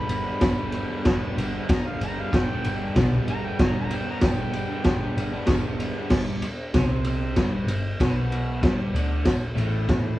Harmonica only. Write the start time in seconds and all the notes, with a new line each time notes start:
Already playing: B5
1.69 A#5
1.87 F5
2.04 A#5
2.20 F5
2.36 G5
3.30 A#5
3.46 G5
3.65 A#5
3.81 A#5
3.96 G5
4.11 A#5
4.26 G5